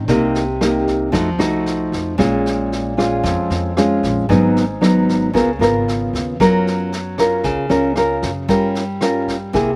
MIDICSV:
0, 0, Header, 1, 4, 480
1, 0, Start_track
1, 0, Tempo, 525394
1, 79, Time_signature, 4, 2, 24, 8
1, 8916, End_track
2, 0, Start_track
2, 0, Title_t, "Nylon-string guitar"
2, 0, Program_c, 0, 24
2, 77, Note_on_c, 0, 48, 52
2, 79, Note_on_c, 0, 58, 55
2, 81, Note_on_c, 0, 63, 51
2, 82, Note_on_c, 0, 67, 57
2, 386, Note_off_c, 0, 58, 0
2, 388, Note_off_c, 0, 67, 0
2, 389, Note_off_c, 0, 63, 0
2, 555, Note_on_c, 0, 58, 50
2, 559, Note_on_c, 0, 63, 55
2, 564, Note_on_c, 0, 67, 53
2, 997, Note_off_c, 0, 58, 0
2, 1000, Note_off_c, 0, 63, 0
2, 1001, Note_off_c, 0, 67, 0
2, 1013, Note_off_c, 0, 48, 0
2, 1024, Note_on_c, 0, 53, 53
2, 1028, Note_on_c, 0, 57, 53
2, 1032, Note_on_c, 0, 63, 48
2, 1032, Note_on_c, 0, 66, 57
2, 1173, Note_off_c, 0, 57, 0
2, 1173, Note_off_c, 0, 63, 0
2, 1176, Note_off_c, 0, 66, 0
2, 1265, Note_on_c, 0, 57, 60
2, 1269, Note_on_c, 0, 63, 62
2, 1276, Note_on_c, 0, 66, 67
2, 1952, Note_off_c, 0, 57, 0
2, 1954, Note_off_c, 0, 63, 0
2, 1957, Note_off_c, 0, 66, 0
2, 1967, Note_off_c, 0, 53, 0
2, 1990, Note_on_c, 0, 46, 54
2, 1994, Note_on_c, 0, 56, 53
2, 1999, Note_on_c, 0, 61, 53
2, 2003, Note_on_c, 0, 65, 62
2, 2675, Note_off_c, 0, 56, 0
2, 2679, Note_off_c, 0, 61, 0
2, 2681, Note_off_c, 0, 65, 0
2, 2715, Note_on_c, 0, 56, 52
2, 2720, Note_on_c, 0, 61, 52
2, 2723, Note_on_c, 0, 65, 57
2, 2929, Note_off_c, 0, 46, 0
2, 2955, Note_on_c, 0, 41, 48
2, 3397, Note_off_c, 0, 56, 0
2, 3399, Note_off_c, 0, 61, 0
2, 3401, Note_off_c, 0, 65, 0
2, 3447, Note_on_c, 0, 56, 56
2, 3449, Note_on_c, 0, 61, 47
2, 3451, Note_on_c, 0, 65, 60
2, 3883, Note_off_c, 0, 61, 0
2, 3884, Note_off_c, 0, 56, 0
2, 3885, Note_off_c, 0, 65, 0
2, 3892, Note_off_c, 0, 41, 0
2, 3918, Note_on_c, 0, 44, 51
2, 3924, Note_on_c, 0, 54, 50
2, 3928, Note_on_c, 0, 59, 49
2, 3928, Note_on_c, 0, 63, 57
2, 4229, Note_off_c, 0, 54, 0
2, 4230, Note_off_c, 0, 59, 0
2, 4231, Note_off_c, 0, 63, 0
2, 4395, Note_on_c, 0, 54, 52
2, 4398, Note_on_c, 0, 59, 47
2, 4400, Note_on_c, 0, 63, 54
2, 4838, Note_off_c, 0, 54, 0
2, 4838, Note_off_c, 0, 59, 0
2, 4840, Note_off_c, 0, 63, 0
2, 4855, Note_off_c, 0, 44, 0
2, 4874, Note_on_c, 0, 49, 49
2, 4878, Note_on_c, 0, 59, 50
2, 4881, Note_on_c, 0, 65, 53
2, 4887, Note_on_c, 0, 70, 59
2, 5019, Note_off_c, 0, 59, 0
2, 5019, Note_off_c, 0, 65, 0
2, 5023, Note_off_c, 0, 70, 0
2, 5117, Note_on_c, 0, 59, 56
2, 5124, Note_on_c, 0, 70, 58
2, 5126, Note_on_c, 0, 65, 52
2, 5799, Note_off_c, 0, 59, 0
2, 5802, Note_off_c, 0, 70, 0
2, 5804, Note_off_c, 0, 65, 0
2, 5812, Note_off_c, 0, 49, 0
2, 5848, Note_on_c, 0, 54, 51
2, 5850, Note_on_c, 0, 61, 55
2, 5855, Note_on_c, 0, 70, 59
2, 5856, Note_on_c, 0, 65, 52
2, 6321, Note_off_c, 0, 61, 0
2, 6322, Note_off_c, 0, 65, 0
2, 6324, Note_off_c, 0, 70, 0
2, 6558, Note_on_c, 0, 61, 58
2, 6564, Note_on_c, 0, 65, 50
2, 6571, Note_on_c, 0, 70, 59
2, 6780, Note_off_c, 0, 54, 0
2, 6800, Note_on_c, 0, 49, 50
2, 7000, Note_off_c, 0, 61, 0
2, 7003, Note_off_c, 0, 65, 0
2, 7005, Note_off_c, 0, 70, 0
2, 7029, Note_on_c, 0, 61, 58
2, 7032, Note_on_c, 0, 65, 59
2, 7039, Note_on_c, 0, 70, 61
2, 7236, Note_off_c, 0, 61, 0
2, 7237, Note_off_c, 0, 65, 0
2, 7240, Note_off_c, 0, 70, 0
2, 7276, Note_on_c, 0, 61, 47
2, 7280, Note_on_c, 0, 65, 50
2, 7286, Note_on_c, 0, 70, 60
2, 7587, Note_off_c, 0, 61, 0
2, 7588, Note_off_c, 0, 65, 0
2, 7592, Note_off_c, 0, 70, 0
2, 7736, Note_off_c, 0, 49, 0
2, 7752, Note_on_c, 0, 55, 54
2, 7753, Note_on_c, 0, 61, 53
2, 7753, Note_on_c, 0, 65, 47
2, 7758, Note_on_c, 0, 70, 57
2, 8065, Note_off_c, 0, 61, 0
2, 8065, Note_off_c, 0, 65, 0
2, 8067, Note_off_c, 0, 70, 0
2, 8236, Note_on_c, 0, 61, 49
2, 8241, Note_on_c, 0, 65, 51
2, 8242, Note_on_c, 0, 70, 58
2, 8548, Note_off_c, 0, 61, 0
2, 8549, Note_off_c, 0, 65, 0
2, 8549, Note_off_c, 0, 70, 0
2, 8693, Note_off_c, 0, 55, 0
2, 8709, Note_on_c, 0, 48, 53
2, 8715, Note_on_c, 0, 58, 51
2, 8716, Note_on_c, 0, 64, 53
2, 8722, Note_on_c, 0, 68, 55
2, 8857, Note_off_c, 0, 58, 0
2, 8860, Note_off_c, 0, 64, 0
2, 8862, Note_off_c, 0, 68, 0
2, 8916, Note_off_c, 0, 48, 0
2, 8916, End_track
3, 0, Start_track
3, 0, Title_t, "Upright bass"
3, 0, Program_c, 1, 32
3, 70, Note_on_c, 1, 36, 87
3, 997, Note_off_c, 1, 36, 0
3, 1032, Note_on_c, 1, 41, 79
3, 1267, Note_off_c, 1, 41, 0
3, 1267, Note_on_c, 1, 36, 77
3, 1718, Note_off_c, 1, 36, 0
3, 1755, Note_on_c, 1, 41, 79
3, 1999, Note_on_c, 1, 34, 89
3, 2013, Note_off_c, 1, 41, 0
3, 2921, Note_off_c, 1, 34, 0
3, 2961, Note_on_c, 1, 41, 83
3, 3071, Note_off_c, 1, 41, 0
3, 3197, Note_on_c, 1, 41, 77
3, 3643, Note_off_c, 1, 41, 0
3, 3683, Note_on_c, 1, 34, 78
3, 3924, Note_on_c, 1, 32, 87
3, 3938, Note_off_c, 1, 34, 0
3, 4844, Note_off_c, 1, 32, 0
3, 4884, Note_on_c, 1, 37, 80
3, 5109, Note_on_c, 1, 32, 73
3, 5123, Note_off_c, 1, 37, 0
3, 5559, Note_off_c, 1, 32, 0
3, 5602, Note_on_c, 1, 39, 73
3, 5846, Note_off_c, 1, 39, 0
3, 5846, Note_on_c, 1, 42, 85
3, 6766, Note_off_c, 1, 42, 0
3, 6797, Note_on_c, 1, 37, 73
3, 6909, Note_off_c, 1, 37, 0
3, 7028, Note_on_c, 1, 37, 74
3, 7480, Note_off_c, 1, 37, 0
3, 7518, Note_on_c, 1, 42, 78
3, 7755, Note_off_c, 1, 42, 0
3, 7755, Note_on_c, 1, 43, 87
3, 8682, Note_off_c, 1, 43, 0
3, 8714, Note_on_c, 1, 36, 79
3, 8916, Note_off_c, 1, 36, 0
3, 8916, End_track
4, 0, Start_track
4, 0, Title_t, "Drums"
4, 72, Note_on_c, 9, 38, 22
4, 73, Note_on_c, 9, 36, 53
4, 164, Note_off_c, 9, 38, 0
4, 165, Note_off_c, 9, 36, 0
4, 316, Note_on_c, 9, 38, 19
4, 407, Note_off_c, 9, 38, 0
4, 558, Note_on_c, 9, 37, 54
4, 558, Note_on_c, 9, 38, 22
4, 649, Note_off_c, 9, 37, 0
4, 649, Note_off_c, 9, 38, 0
4, 796, Note_on_c, 9, 36, 22
4, 800, Note_on_c, 9, 38, 22
4, 887, Note_off_c, 9, 36, 0
4, 891, Note_off_c, 9, 38, 0
4, 1033, Note_on_c, 9, 38, 22
4, 1035, Note_on_c, 9, 36, 56
4, 1125, Note_off_c, 9, 38, 0
4, 1126, Note_off_c, 9, 36, 0
4, 1274, Note_on_c, 9, 37, 56
4, 1274, Note_on_c, 9, 38, 22
4, 1366, Note_off_c, 9, 37, 0
4, 1366, Note_off_c, 9, 38, 0
4, 1517, Note_on_c, 9, 38, 22
4, 1609, Note_off_c, 9, 38, 0
4, 1757, Note_on_c, 9, 36, 22
4, 1762, Note_on_c, 9, 38, 22
4, 1849, Note_off_c, 9, 36, 0
4, 1853, Note_off_c, 9, 38, 0
4, 2000, Note_on_c, 9, 36, 55
4, 2003, Note_on_c, 9, 37, 50
4, 2003, Note_on_c, 9, 38, 22
4, 2091, Note_off_c, 9, 36, 0
4, 2095, Note_off_c, 9, 37, 0
4, 2095, Note_off_c, 9, 38, 0
4, 2246, Note_on_c, 9, 38, 21
4, 2337, Note_off_c, 9, 38, 0
4, 2487, Note_on_c, 9, 38, 21
4, 2578, Note_off_c, 9, 38, 0
4, 2723, Note_on_c, 9, 36, 21
4, 2731, Note_on_c, 9, 37, 53
4, 2731, Note_on_c, 9, 38, 20
4, 2814, Note_off_c, 9, 36, 0
4, 2822, Note_off_c, 9, 37, 0
4, 2822, Note_off_c, 9, 38, 0
4, 2962, Note_on_c, 9, 36, 55
4, 2963, Note_on_c, 9, 38, 22
4, 3053, Note_off_c, 9, 36, 0
4, 3054, Note_off_c, 9, 38, 0
4, 3201, Note_on_c, 9, 38, 23
4, 3292, Note_off_c, 9, 38, 0
4, 3443, Note_on_c, 9, 37, 57
4, 3443, Note_on_c, 9, 38, 22
4, 3534, Note_off_c, 9, 37, 0
4, 3534, Note_off_c, 9, 38, 0
4, 3683, Note_on_c, 9, 36, 22
4, 3686, Note_on_c, 9, 38, 20
4, 3775, Note_off_c, 9, 36, 0
4, 3777, Note_off_c, 9, 38, 0
4, 3925, Note_on_c, 9, 36, 54
4, 3930, Note_on_c, 9, 38, 22
4, 4017, Note_off_c, 9, 36, 0
4, 4021, Note_off_c, 9, 38, 0
4, 4170, Note_on_c, 9, 38, 21
4, 4261, Note_off_c, 9, 38, 0
4, 4407, Note_on_c, 9, 37, 55
4, 4407, Note_on_c, 9, 38, 21
4, 4498, Note_off_c, 9, 37, 0
4, 4498, Note_off_c, 9, 38, 0
4, 4644, Note_on_c, 9, 36, 21
4, 4651, Note_on_c, 9, 38, 21
4, 4736, Note_off_c, 9, 36, 0
4, 4742, Note_off_c, 9, 38, 0
4, 4885, Note_on_c, 9, 36, 56
4, 4891, Note_on_c, 9, 38, 22
4, 4977, Note_off_c, 9, 36, 0
4, 4982, Note_off_c, 9, 38, 0
4, 5131, Note_on_c, 9, 37, 54
4, 5131, Note_on_c, 9, 38, 22
4, 5223, Note_off_c, 9, 37, 0
4, 5223, Note_off_c, 9, 38, 0
4, 5372, Note_on_c, 9, 38, 22
4, 5464, Note_off_c, 9, 38, 0
4, 5607, Note_on_c, 9, 36, 20
4, 5613, Note_on_c, 9, 38, 22
4, 5698, Note_off_c, 9, 36, 0
4, 5704, Note_off_c, 9, 38, 0
4, 5847, Note_on_c, 9, 36, 54
4, 5854, Note_on_c, 9, 37, 54
4, 5854, Note_on_c, 9, 38, 22
4, 5938, Note_off_c, 9, 36, 0
4, 5945, Note_off_c, 9, 37, 0
4, 5945, Note_off_c, 9, 38, 0
4, 6094, Note_on_c, 9, 38, 20
4, 6185, Note_off_c, 9, 38, 0
4, 6325, Note_on_c, 9, 38, 22
4, 6416, Note_off_c, 9, 38, 0
4, 6560, Note_on_c, 9, 37, 51
4, 6560, Note_on_c, 9, 38, 21
4, 6562, Note_on_c, 9, 36, 19
4, 6651, Note_off_c, 9, 37, 0
4, 6651, Note_off_c, 9, 38, 0
4, 6654, Note_off_c, 9, 36, 0
4, 6792, Note_on_c, 9, 38, 21
4, 6800, Note_on_c, 9, 36, 55
4, 6883, Note_off_c, 9, 38, 0
4, 6891, Note_off_c, 9, 36, 0
4, 7032, Note_on_c, 9, 38, 21
4, 7123, Note_off_c, 9, 38, 0
4, 7269, Note_on_c, 9, 37, 53
4, 7269, Note_on_c, 9, 38, 22
4, 7360, Note_off_c, 9, 37, 0
4, 7360, Note_off_c, 9, 38, 0
4, 7513, Note_on_c, 9, 38, 22
4, 7517, Note_on_c, 9, 36, 22
4, 7604, Note_off_c, 9, 38, 0
4, 7608, Note_off_c, 9, 36, 0
4, 7752, Note_on_c, 9, 38, 21
4, 7756, Note_on_c, 9, 36, 50
4, 7844, Note_off_c, 9, 38, 0
4, 7847, Note_off_c, 9, 36, 0
4, 7994, Note_on_c, 9, 38, 20
4, 8085, Note_off_c, 9, 38, 0
4, 8229, Note_on_c, 9, 37, 53
4, 8229, Note_on_c, 9, 38, 22
4, 8321, Note_off_c, 9, 37, 0
4, 8321, Note_off_c, 9, 38, 0
4, 8477, Note_on_c, 9, 36, 21
4, 8480, Note_on_c, 9, 38, 21
4, 8568, Note_off_c, 9, 36, 0
4, 8571, Note_off_c, 9, 38, 0
4, 8717, Note_on_c, 9, 36, 55
4, 8717, Note_on_c, 9, 38, 21
4, 8808, Note_off_c, 9, 36, 0
4, 8809, Note_off_c, 9, 38, 0
4, 8916, End_track
0, 0, End_of_file